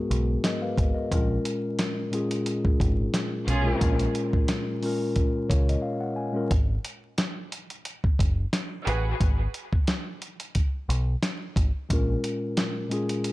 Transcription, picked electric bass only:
0, 0, Header, 1, 2, 480
1, 0, Start_track
1, 0, Tempo, 674157
1, 794, Time_signature, 4, 2, 24, 8
1, 9487, End_track
2, 0, Start_track
2, 0, Title_t, "Picked electric bass"
2, 0, Program_c, 0, 34
2, 75, Note_on_c, 0, 35, 94
2, 256, Note_off_c, 0, 35, 0
2, 553, Note_on_c, 0, 32, 95
2, 653, Note_off_c, 0, 32, 0
2, 794, Note_on_c, 0, 34, 106
2, 976, Note_off_c, 0, 34, 0
2, 1995, Note_on_c, 0, 32, 100
2, 2176, Note_off_c, 0, 32, 0
2, 2473, Note_on_c, 0, 35, 93
2, 2655, Note_off_c, 0, 35, 0
2, 2714, Note_on_c, 0, 34, 108
2, 2896, Note_off_c, 0, 34, 0
2, 3914, Note_on_c, 0, 37, 87
2, 4096, Note_off_c, 0, 37, 0
2, 4635, Note_on_c, 0, 32, 105
2, 4816, Note_off_c, 0, 32, 0
2, 5833, Note_on_c, 0, 30, 86
2, 6015, Note_off_c, 0, 30, 0
2, 6315, Note_on_c, 0, 33, 100
2, 6496, Note_off_c, 0, 33, 0
2, 6554, Note_on_c, 0, 32, 111
2, 6736, Note_off_c, 0, 32, 0
2, 7752, Note_on_c, 0, 35, 94
2, 7935, Note_off_c, 0, 35, 0
2, 8232, Note_on_c, 0, 32, 91
2, 8332, Note_off_c, 0, 32, 0
2, 8474, Note_on_c, 0, 34, 100
2, 8656, Note_off_c, 0, 34, 0
2, 9487, End_track
0, 0, End_of_file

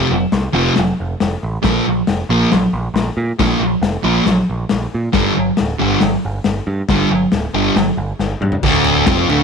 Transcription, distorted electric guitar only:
0, 0, Header, 1, 2, 480
1, 0, Start_track
1, 0, Tempo, 436999
1, 1811, Time_signature, 4, 2, 24, 8
1, 10363, End_track
2, 0, Start_track
2, 0, Title_t, "Distorted electric guitar"
2, 0, Program_c, 0, 30
2, 582, Note_on_c, 0, 41, 82
2, 598, Note_on_c, 0, 48, 92
2, 605, Note_on_c, 0, 53, 108
2, 788, Note_off_c, 0, 41, 0
2, 796, Note_off_c, 0, 48, 0
2, 799, Note_off_c, 0, 53, 0
2, 1786, Note_on_c, 0, 46, 88
2, 1797, Note_on_c, 0, 53, 77
2, 1800, Note_on_c, 0, 58, 105
2, 1991, Note_off_c, 0, 46, 0
2, 1996, Note_off_c, 0, 53, 0
2, 1998, Note_off_c, 0, 58, 0
2, 2527, Note_on_c, 0, 46, 90
2, 2540, Note_on_c, 0, 58, 114
2, 2543, Note_on_c, 0, 53, 93
2, 2722, Note_off_c, 0, 46, 0
2, 2728, Note_off_c, 0, 58, 0
2, 2730, Note_off_c, 0, 53, 0
2, 3723, Note_on_c, 0, 46, 97
2, 3727, Note_on_c, 0, 53, 88
2, 3738, Note_on_c, 0, 58, 101
2, 3920, Note_off_c, 0, 46, 0
2, 3922, Note_off_c, 0, 53, 0
2, 3927, Note_off_c, 0, 58, 0
2, 4431, Note_on_c, 0, 46, 96
2, 4434, Note_on_c, 0, 53, 107
2, 4445, Note_on_c, 0, 58, 116
2, 4634, Note_off_c, 0, 46, 0
2, 4636, Note_off_c, 0, 53, 0
2, 4641, Note_off_c, 0, 58, 0
2, 5632, Note_on_c, 0, 43, 95
2, 5644, Note_on_c, 0, 50, 92
2, 5650, Note_on_c, 0, 55, 100
2, 5835, Note_off_c, 0, 43, 0
2, 5841, Note_off_c, 0, 50, 0
2, 5844, Note_off_c, 0, 55, 0
2, 6362, Note_on_c, 0, 43, 96
2, 6372, Note_on_c, 0, 50, 97
2, 6374, Note_on_c, 0, 55, 103
2, 6560, Note_off_c, 0, 43, 0
2, 6564, Note_off_c, 0, 50, 0
2, 6565, Note_off_c, 0, 55, 0
2, 7571, Note_on_c, 0, 43, 85
2, 7571, Note_on_c, 0, 50, 92
2, 7578, Note_on_c, 0, 55, 105
2, 7763, Note_off_c, 0, 50, 0
2, 7764, Note_off_c, 0, 43, 0
2, 7767, Note_off_c, 0, 55, 0
2, 8283, Note_on_c, 0, 43, 104
2, 8284, Note_on_c, 0, 50, 105
2, 8293, Note_on_c, 0, 55, 115
2, 8479, Note_off_c, 0, 43, 0
2, 8480, Note_off_c, 0, 50, 0
2, 8484, Note_off_c, 0, 55, 0
2, 9486, Note_on_c, 0, 38, 96
2, 9503, Note_on_c, 0, 50, 90
2, 9959, Note_off_c, 0, 38, 0
2, 9964, Note_on_c, 0, 41, 90
2, 9967, Note_off_c, 0, 50, 0
2, 9974, Note_on_c, 0, 53, 95
2, 10198, Note_off_c, 0, 41, 0
2, 10203, Note_off_c, 0, 53, 0
2, 10210, Note_on_c, 0, 38, 91
2, 10216, Note_on_c, 0, 50, 95
2, 10363, Note_off_c, 0, 38, 0
2, 10363, Note_off_c, 0, 50, 0
2, 10363, End_track
0, 0, End_of_file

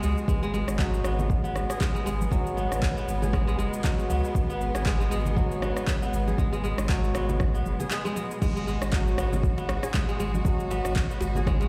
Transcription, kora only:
0, 0, Header, 1, 2, 480
1, 0, Start_track
1, 0, Key_signature, 5, "minor"
1, 0, Tempo, 508475
1, 266, Time_signature, 4, 2, 24, 8
1, 11029, End_track
2, 0, Start_track
2, 0, Title_t, "Kora"
2, 0, Program_c, 0, 46
2, 0, Note_on_c, 0, 59, 72
2, 0, Note_on_c, 0, 68, 79
2, 29, Note_on_c, 0, 56, 100
2, 256, Note_off_c, 0, 56, 0
2, 268, Note_on_c, 0, 56, 94
2, 392, Note_off_c, 0, 56, 0
2, 403, Note_on_c, 0, 56, 103
2, 496, Note_off_c, 0, 56, 0
2, 507, Note_on_c, 0, 56, 103
2, 746, Note_on_c, 0, 54, 84
2, 970, Note_off_c, 0, 68, 0
2, 980, Note_off_c, 0, 59, 0
2, 984, Note_on_c, 0, 59, 82
2, 1355, Note_off_c, 0, 59, 0
2, 1359, Note_on_c, 0, 59, 73
2, 1600, Note_on_c, 0, 68, 81
2, 1693, Note_off_c, 0, 56, 0
2, 1704, Note_on_c, 0, 56, 101
2, 1829, Note_off_c, 0, 56, 0
2, 1840, Note_on_c, 0, 56, 102
2, 1932, Note_off_c, 0, 56, 0
2, 1943, Note_on_c, 0, 56, 102
2, 2176, Note_off_c, 0, 54, 0
2, 2188, Note_on_c, 0, 54, 79
2, 2422, Note_off_c, 0, 59, 0
2, 2426, Note_on_c, 0, 59, 76
2, 2798, Note_off_c, 0, 59, 0
2, 2801, Note_on_c, 0, 59, 79
2, 2888, Note_off_c, 0, 68, 0
2, 3040, Note_on_c, 0, 68, 73
2, 3133, Note_off_c, 0, 56, 0
2, 3144, Note_on_c, 0, 56, 105
2, 3268, Note_off_c, 0, 56, 0
2, 3280, Note_on_c, 0, 56, 103
2, 3374, Note_off_c, 0, 56, 0
2, 3385, Note_on_c, 0, 56, 113
2, 3614, Note_off_c, 0, 54, 0
2, 3626, Note_on_c, 0, 54, 83
2, 3864, Note_off_c, 0, 59, 0
2, 3867, Note_on_c, 0, 59, 80
2, 4241, Note_off_c, 0, 59, 0
2, 4244, Note_on_c, 0, 59, 80
2, 4328, Note_off_c, 0, 68, 0
2, 4483, Note_on_c, 0, 68, 77
2, 4575, Note_off_c, 0, 56, 0
2, 4587, Note_on_c, 0, 56, 109
2, 4710, Note_off_c, 0, 56, 0
2, 4721, Note_on_c, 0, 56, 101
2, 4814, Note_off_c, 0, 56, 0
2, 4825, Note_on_c, 0, 56, 106
2, 5054, Note_off_c, 0, 54, 0
2, 5066, Note_on_c, 0, 54, 84
2, 5304, Note_off_c, 0, 59, 0
2, 5308, Note_on_c, 0, 59, 83
2, 5679, Note_off_c, 0, 59, 0
2, 5683, Note_on_c, 0, 59, 77
2, 5771, Note_off_c, 0, 68, 0
2, 5924, Note_on_c, 0, 68, 78
2, 6017, Note_off_c, 0, 56, 0
2, 6029, Note_on_c, 0, 56, 101
2, 6149, Note_off_c, 0, 56, 0
2, 6161, Note_on_c, 0, 56, 108
2, 6253, Note_off_c, 0, 56, 0
2, 6264, Note_on_c, 0, 56, 108
2, 6493, Note_off_c, 0, 54, 0
2, 6504, Note_on_c, 0, 54, 86
2, 6742, Note_off_c, 0, 59, 0
2, 6746, Note_on_c, 0, 59, 75
2, 7118, Note_off_c, 0, 59, 0
2, 7122, Note_on_c, 0, 59, 75
2, 7211, Note_off_c, 0, 68, 0
2, 7361, Note_on_c, 0, 68, 81
2, 7454, Note_off_c, 0, 56, 0
2, 7465, Note_on_c, 0, 56, 98
2, 7588, Note_off_c, 0, 56, 0
2, 7599, Note_on_c, 0, 56, 104
2, 7692, Note_off_c, 0, 56, 0
2, 7703, Note_on_c, 0, 56, 99
2, 7934, Note_off_c, 0, 56, 0
2, 7945, Note_on_c, 0, 56, 105
2, 8071, Note_off_c, 0, 56, 0
2, 8082, Note_on_c, 0, 56, 106
2, 8175, Note_off_c, 0, 56, 0
2, 8187, Note_on_c, 0, 56, 103
2, 8413, Note_off_c, 0, 54, 0
2, 8425, Note_on_c, 0, 54, 85
2, 8648, Note_off_c, 0, 68, 0
2, 8662, Note_off_c, 0, 59, 0
2, 8666, Note_on_c, 0, 59, 81
2, 9038, Note_off_c, 0, 59, 0
2, 9042, Note_on_c, 0, 59, 75
2, 9281, Note_on_c, 0, 68, 83
2, 9374, Note_off_c, 0, 56, 0
2, 9386, Note_on_c, 0, 56, 95
2, 9509, Note_off_c, 0, 56, 0
2, 9521, Note_on_c, 0, 56, 104
2, 9614, Note_off_c, 0, 56, 0
2, 9625, Note_on_c, 0, 56, 104
2, 9852, Note_off_c, 0, 54, 0
2, 9863, Note_on_c, 0, 54, 80
2, 10101, Note_off_c, 0, 59, 0
2, 10105, Note_on_c, 0, 59, 81
2, 10477, Note_off_c, 0, 59, 0
2, 10480, Note_on_c, 0, 59, 79
2, 10569, Note_off_c, 0, 68, 0
2, 10721, Note_on_c, 0, 68, 78
2, 10815, Note_off_c, 0, 56, 0
2, 10826, Note_on_c, 0, 56, 107
2, 10950, Note_off_c, 0, 56, 0
2, 10962, Note_on_c, 0, 56, 99
2, 11029, Note_off_c, 0, 54, 0
2, 11029, Note_off_c, 0, 56, 0
2, 11029, Note_off_c, 0, 59, 0
2, 11029, Note_off_c, 0, 68, 0
2, 11029, End_track
0, 0, End_of_file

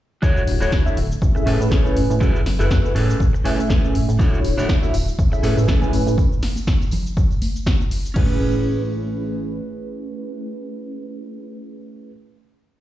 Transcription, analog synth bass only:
0, 0, Header, 1, 2, 480
1, 0, Start_track
1, 0, Key_signature, 3, "major"
1, 0, Tempo, 495868
1, 221, Time_signature, 4, 2, 24, 8
1, 12395, End_track
2, 0, Start_track
2, 0, Title_t, "Analog synth bass"
2, 0, Program_c, 0, 38
2, 219, Note_on_c, 0, 38, 97
2, 326, Note_off_c, 0, 38, 0
2, 459, Note_on_c, 0, 26, 97
2, 566, Note_off_c, 0, 26, 0
2, 592, Note_on_c, 0, 26, 99
2, 679, Note_off_c, 0, 26, 0
2, 699, Note_on_c, 0, 38, 90
2, 806, Note_off_c, 0, 38, 0
2, 942, Note_on_c, 0, 26, 84
2, 1138, Note_off_c, 0, 26, 0
2, 1179, Note_on_c, 0, 33, 93
2, 1286, Note_off_c, 0, 33, 0
2, 1420, Note_on_c, 0, 45, 109
2, 1526, Note_off_c, 0, 45, 0
2, 1553, Note_on_c, 0, 45, 84
2, 1639, Note_off_c, 0, 45, 0
2, 1659, Note_on_c, 0, 33, 91
2, 1903, Note_on_c, 0, 45, 80
2, 1918, Note_off_c, 0, 33, 0
2, 2008, Note_off_c, 0, 45, 0
2, 2034, Note_on_c, 0, 45, 82
2, 2120, Note_off_c, 0, 45, 0
2, 2139, Note_on_c, 0, 42, 102
2, 2246, Note_off_c, 0, 42, 0
2, 2276, Note_on_c, 0, 30, 42
2, 2361, Note_off_c, 0, 30, 0
2, 2383, Note_on_c, 0, 30, 98
2, 2487, Note_off_c, 0, 30, 0
2, 2516, Note_on_c, 0, 30, 98
2, 2601, Note_off_c, 0, 30, 0
2, 2620, Note_on_c, 0, 42, 96
2, 2726, Note_off_c, 0, 42, 0
2, 2861, Note_on_c, 0, 45, 83
2, 3058, Note_off_c, 0, 45, 0
2, 3100, Note_on_c, 0, 33, 93
2, 3206, Note_off_c, 0, 33, 0
2, 3233, Note_on_c, 0, 45, 41
2, 3319, Note_off_c, 0, 45, 0
2, 3340, Note_on_c, 0, 45, 102
2, 3446, Note_off_c, 0, 45, 0
2, 3473, Note_on_c, 0, 45, 90
2, 3559, Note_off_c, 0, 45, 0
2, 3581, Note_on_c, 0, 33, 90
2, 3821, Note_on_c, 0, 45, 85
2, 3835, Note_off_c, 0, 33, 0
2, 3926, Note_off_c, 0, 45, 0
2, 3954, Note_on_c, 0, 45, 82
2, 4040, Note_off_c, 0, 45, 0
2, 4060, Note_on_c, 0, 38, 102
2, 4166, Note_off_c, 0, 38, 0
2, 4300, Note_on_c, 0, 26, 96
2, 4406, Note_off_c, 0, 26, 0
2, 4432, Note_on_c, 0, 26, 101
2, 4519, Note_off_c, 0, 26, 0
2, 4541, Note_on_c, 0, 38, 95
2, 4646, Note_off_c, 0, 38, 0
2, 4782, Note_on_c, 0, 26, 83
2, 4978, Note_off_c, 0, 26, 0
2, 5022, Note_on_c, 0, 33, 97
2, 5127, Note_off_c, 0, 33, 0
2, 5260, Note_on_c, 0, 45, 103
2, 5366, Note_off_c, 0, 45, 0
2, 5391, Note_on_c, 0, 45, 86
2, 5478, Note_off_c, 0, 45, 0
2, 5502, Note_on_c, 0, 33, 85
2, 5741, Note_on_c, 0, 45, 79
2, 5755, Note_off_c, 0, 33, 0
2, 5846, Note_off_c, 0, 45, 0
2, 5872, Note_on_c, 0, 45, 84
2, 5959, Note_off_c, 0, 45, 0
2, 7898, Note_on_c, 0, 33, 104
2, 9301, Note_off_c, 0, 33, 0
2, 12395, End_track
0, 0, End_of_file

